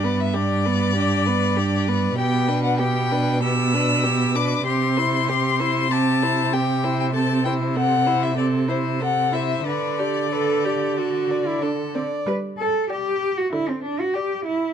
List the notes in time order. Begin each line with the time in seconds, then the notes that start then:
Already playing: G2 D5
0.03 B3 B4
0.20 E5
0.34 D4 G4 D5
0.65 B3 B4
0.95 D4 G4
1.26 B3 B4
1.57 D4 G4
1.88 B3 B4
2.18 B2 B3 G4 G5
2.48 D4 B4
2.64 F#5
2.79 B3 G4 G5
3.11 D4 B4
3.43 B3 G4 E6
3.74 D4 B4
4.03 B3 G4
4.35 D4 B4 D6
4.66 C3 C4 G4 C6
4.97 E4 C5
5.29 C4 G4
5.60 E4 C5
5.91 C4 G4 A5
6.23 E4 C5
6.53 C4 G4 G5
6.84 E4 C5
7.00 G5
7.14 C4 A4 A5
7.45 E4 C5 G5
7.76 C4 A4 F#5
8.06 E4 C5
8.23 E5
8.37 C4 A4 D5
8.68 E4 C5
9.00 C4 A4 F#5
9.32 E4 C5 E5
9.66 D3 D4 B4 D5
9.99 G4 D5
10.31 A4 B4
10.65 G4 D5
10.98 F#4 A4
11.31 D5
11.47 E4
11.62 D4 A4
11.95 C4 D5
12.26 G3 B4
12.58 A4
12.89 G4 D5 G5
13.37 F#4
13.52 D3 E4
13.68 C4
13.83 D4
13.99 F#4
14.14 G4 D5 G5
14.45 E4